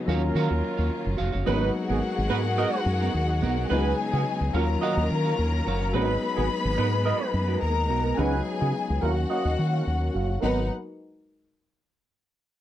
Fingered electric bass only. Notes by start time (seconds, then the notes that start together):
0.08 D#2
0.35 D#3
0.51 D#2
0.79 D#2
1.06 F#1
1.19 F1
1.34 F#1
1.48 G#1
1.90 G#1
2.18 G#1
2.31 G#2
2.86 F#2
3.14 D#2
3.42 B1
3.71 C#2
4.13 C#3
4.41 C#2
4.54 D#2
4.97 D#2
5.11 D#3
5.39 D#2
5.67 F#1
5.95 G#1
6.38 G#1
6.65 G#1
6.79 G#2
7.34 F#2
7.62 D#2
7.90 B1
8.19 C#2
8.62 C#3
8.90 C#2
9.03 D#2
9.45 D#2
9.59 D#3
9.87 D#2
10.15 F#1
10.43 G#1